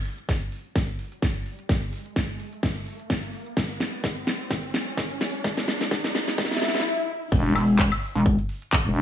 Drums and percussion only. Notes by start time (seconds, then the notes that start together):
0.05 open hi-hat
0.18 closed hi-hat
0.29 kick, snare, closed hi-hat
0.42 closed hi-hat
0.52 open hi-hat
0.76 kick, snare, closed hi-hat
0.89 closed hi-hat
0.99 open hi-hat
1.12 closed hi-hat
1.22 kick, snare, closed hi-hat
1.35 closed hi-hat
1.46 open hi-hat
1.59 closed hi-hat
1.69 kick, snare, closed hi-hat
1.82 closed hi-hat
1.93 open hi-hat
2.06 closed hi-hat
2.16 kick, snare, closed hi-hat
2.29 closed hi-hat
2.40 open hi-hat
2.53 closed hi-hat
2.63 kick, snare, closed hi-hat
2.76 closed hi-hat
2.87 open hi-hat
3.00 closed hi-hat
3.10 kick, snare, closed hi-hat
3.23 closed hi-hat
3.33 open hi-hat
3.47 closed hi-hat
3.57 kick, snare, closed hi-hat
3.70 closed hi-hat
3.80 snare, open hi-hat
3.93 closed hi-hat
4.04 kick, snare, closed hi-hat
4.17 closed hi-hat
4.27 snare, open hi-hat
4.51 kick, snare, closed hi-hat
4.64 closed hi-hat
4.74 snare, open hi-hat
4.87 closed hi-hat
4.97 kick, snare, closed hi-hat
5.10 closed hi-hat
5.21 snare, open hi-hat
5.34 closed hi-hat
5.44 kick, snare, closed hi-hat
5.57 snare, closed hi-hat
5.68 snare, open hi-hat
5.81 snare, closed hi-hat
5.91 kick, snare, closed hi-hat
6.04 snare, closed hi-hat
6.15 snare, open hi-hat
6.28 snare, closed hi-hat
6.38 kick, snare, closed hi-hat
6.45 snare
6.51 snare, closed hi-hat
6.56 snare
6.62 snare, open hi-hat
6.68 snare
6.75 snare, closed hi-hat
6.80 snare
7.32 kick, closed hi-hat, crash
7.45 closed hi-hat
7.55 open hi-hat, high woodblock
7.68 closed hi-hat
7.79 kick, clap, closed hi-hat
7.92 closed hi-hat, high woodblock
8.02 open hi-hat
8.26 kick, closed hi-hat
8.39 closed hi-hat
8.49 open hi-hat
8.62 closed hi-hat
8.73 kick, clap, closed hi-hat
8.86 closed hi-hat
8.96 open hi-hat